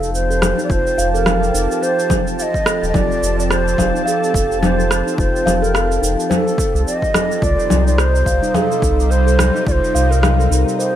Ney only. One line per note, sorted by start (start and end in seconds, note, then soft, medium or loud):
0.00 0.10 A4 loud
0.14 0.60 C5 loud
0.64 0.72 D5 medium
0.71 1.13 C5 loud
1.14 1.84 A#4 medium
1.83 2.14 C5 loud
2.39 2.85 D#5 loud
2.39 2.43 F5 medium
2.89 2.96 D#5 medium
2.94 3.38 D5 loud
3.39 3.44 D5 medium
3.49 4.02 C5 loud
4.06 4.58 A4 medium
4.62 5.14 C5 loud
5.18 5.64 C5 loud
5.62 6.04 A#4 medium
6.30 6.82 A4 loud
6.86 7.44 D#5 loud
7.43 7.86 D5 loud
7.87 8.00 D5 medium
7.99 8.56 C5 loud
8.55 9.12 A4 loud
9.10 9.66 C5 loud
9.67 9.73 D5 medium
9.72 10.13 C5 loud
10.11 10.52 A#4 medium
10.79 10.96 C5 loud